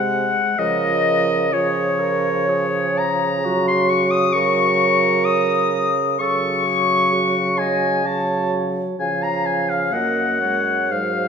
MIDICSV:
0, 0, Header, 1, 6, 480
1, 0, Start_track
1, 0, Tempo, 949367
1, 292, Time_signature, 3, 2, 24, 8
1, 1737, Tempo, 909091
1, 2697, Tempo, 934579
1, 5097, Tempo, 1000000
1, 5747, End_track
2, 0, Start_track
2, 0, Title_t, "Flute"
2, 0, Program_c, 0, 73
2, 0, Note_on_c, 0, 78, 78
2, 292, Note_off_c, 0, 78, 0
2, 295, Note_on_c, 0, 75, 83
2, 774, Note_on_c, 0, 73, 68
2, 781, Note_off_c, 0, 75, 0
2, 1505, Note_off_c, 0, 73, 0
2, 1511, Note_on_c, 0, 82, 76
2, 1862, Note_on_c, 0, 84, 81
2, 1870, Note_off_c, 0, 82, 0
2, 1982, Note_on_c, 0, 85, 74
2, 1990, Note_off_c, 0, 84, 0
2, 2103, Note_on_c, 0, 87, 75
2, 2111, Note_off_c, 0, 85, 0
2, 2221, Note_on_c, 0, 85, 84
2, 2229, Note_off_c, 0, 87, 0
2, 2558, Note_off_c, 0, 85, 0
2, 2706, Note_on_c, 0, 87, 82
2, 3187, Note_on_c, 0, 85, 83
2, 3195, Note_off_c, 0, 87, 0
2, 3893, Note_on_c, 0, 80, 67
2, 3900, Note_off_c, 0, 85, 0
2, 4135, Note_on_c, 0, 81, 52
2, 4143, Note_off_c, 0, 80, 0
2, 4378, Note_off_c, 0, 81, 0
2, 4625, Note_on_c, 0, 80, 61
2, 4743, Note_on_c, 0, 82, 57
2, 4750, Note_off_c, 0, 80, 0
2, 4864, Note_on_c, 0, 80, 51
2, 4872, Note_off_c, 0, 82, 0
2, 4990, Note_on_c, 0, 77, 57
2, 4998, Note_off_c, 0, 80, 0
2, 5106, Note_on_c, 0, 78, 58
2, 5113, Note_off_c, 0, 77, 0
2, 5575, Note_on_c, 0, 77, 48
2, 5582, Note_off_c, 0, 78, 0
2, 5747, Note_off_c, 0, 77, 0
2, 5747, End_track
3, 0, Start_track
3, 0, Title_t, "Oboe"
3, 0, Program_c, 1, 68
3, 0, Note_on_c, 1, 78, 80
3, 298, Note_on_c, 1, 75, 97
3, 306, Note_off_c, 1, 78, 0
3, 776, Note_on_c, 1, 73, 77
3, 784, Note_off_c, 1, 75, 0
3, 1512, Note_on_c, 1, 82, 82
3, 1519, Note_off_c, 1, 73, 0
3, 1862, Note_off_c, 1, 82, 0
3, 1867, Note_on_c, 1, 84, 82
3, 1981, Note_on_c, 1, 85, 81
3, 1988, Note_off_c, 1, 84, 0
3, 2093, Note_on_c, 1, 87, 86
3, 2101, Note_off_c, 1, 85, 0
3, 2209, Note_on_c, 1, 85, 97
3, 2217, Note_off_c, 1, 87, 0
3, 2696, Note_on_c, 1, 87, 82
3, 2704, Note_off_c, 1, 85, 0
3, 3042, Note_off_c, 1, 87, 0
3, 3181, Note_on_c, 1, 85, 89
3, 3894, Note_on_c, 1, 80, 74
3, 3902, Note_off_c, 1, 85, 0
3, 4140, Note_on_c, 1, 81, 62
3, 4148, Note_off_c, 1, 80, 0
3, 4380, Note_off_c, 1, 81, 0
3, 4620, Note_on_c, 1, 80, 66
3, 4739, Note_on_c, 1, 82, 71
3, 4746, Note_off_c, 1, 80, 0
3, 4858, Note_on_c, 1, 80, 63
3, 4866, Note_off_c, 1, 82, 0
3, 4980, Note_on_c, 1, 77, 59
3, 4987, Note_off_c, 1, 80, 0
3, 5100, Note_on_c, 1, 78, 65
3, 5107, Note_off_c, 1, 77, 0
3, 5574, Note_on_c, 1, 77, 56
3, 5582, Note_off_c, 1, 78, 0
3, 5747, Note_off_c, 1, 77, 0
3, 5747, End_track
4, 0, Start_track
4, 0, Title_t, "Clarinet"
4, 0, Program_c, 2, 71
4, 0, Note_on_c, 2, 72, 83
4, 156, Note_off_c, 2, 72, 0
4, 294, Note_on_c, 2, 70, 67
4, 748, Note_off_c, 2, 70, 0
4, 768, Note_on_c, 2, 68, 67
4, 1008, Note_on_c, 2, 70, 68
4, 1015, Note_off_c, 2, 68, 0
4, 1254, Note_off_c, 2, 70, 0
4, 1258, Note_on_c, 2, 68, 71
4, 1741, Note_on_c, 2, 66, 67
4, 1749, Note_off_c, 2, 68, 0
4, 2219, Note_on_c, 2, 70, 76
4, 2227, Note_off_c, 2, 66, 0
4, 3183, Note_off_c, 2, 70, 0
4, 3186, Note_on_c, 2, 69, 61
4, 3422, Note_on_c, 2, 68, 60
4, 3430, Note_off_c, 2, 69, 0
4, 3661, Note_on_c, 2, 66, 60
4, 3669, Note_off_c, 2, 68, 0
4, 3903, Note_on_c, 2, 75, 62
4, 3911, Note_off_c, 2, 66, 0
4, 4139, Note_on_c, 2, 73, 52
4, 4147, Note_off_c, 2, 75, 0
4, 4482, Note_off_c, 2, 73, 0
4, 4623, Note_on_c, 2, 77, 61
4, 5100, Note_on_c, 2, 75, 59
4, 5108, Note_off_c, 2, 77, 0
4, 5324, Note_off_c, 2, 75, 0
4, 5327, Note_on_c, 2, 73, 49
4, 5567, Note_on_c, 2, 72, 52
4, 5574, Note_off_c, 2, 73, 0
4, 5747, Note_off_c, 2, 72, 0
4, 5747, End_track
5, 0, Start_track
5, 0, Title_t, "French horn"
5, 0, Program_c, 3, 60
5, 0, Note_on_c, 3, 56, 71
5, 286, Note_off_c, 3, 56, 0
5, 300, Note_on_c, 3, 53, 67
5, 762, Note_off_c, 3, 53, 0
5, 774, Note_on_c, 3, 53, 71
5, 1744, Note_on_c, 3, 54, 67
5, 1752, Note_off_c, 3, 53, 0
5, 2216, Note_off_c, 3, 54, 0
5, 2220, Note_on_c, 3, 54, 69
5, 3030, Note_off_c, 3, 54, 0
5, 3184, Note_on_c, 3, 54, 69
5, 4116, Note_off_c, 3, 54, 0
5, 4134, Note_on_c, 3, 54, 59
5, 4609, Note_off_c, 3, 54, 0
5, 4617, Note_on_c, 3, 53, 53
5, 5098, Note_on_c, 3, 58, 43
5, 5105, Note_off_c, 3, 53, 0
5, 5327, Note_off_c, 3, 58, 0
5, 5331, Note_on_c, 3, 56, 44
5, 5573, Note_on_c, 3, 54, 51
5, 5580, Note_off_c, 3, 56, 0
5, 5747, Note_off_c, 3, 54, 0
5, 5747, End_track
6, 0, Start_track
6, 0, Title_t, "Bassoon"
6, 0, Program_c, 4, 70
6, 0, Note_on_c, 4, 48, 66
6, 136, Note_off_c, 4, 48, 0
6, 298, Note_on_c, 4, 49, 66
6, 3164, Note_off_c, 4, 49, 0
6, 3184, Note_on_c, 4, 49, 65
6, 4533, Note_off_c, 4, 49, 0
6, 4620, Note_on_c, 4, 49, 51
6, 5101, Note_on_c, 4, 42, 53
6, 5108, Note_off_c, 4, 49, 0
6, 5568, Note_on_c, 4, 44, 47
6, 5576, Note_off_c, 4, 42, 0
6, 5747, Note_off_c, 4, 44, 0
6, 5747, End_track
0, 0, End_of_file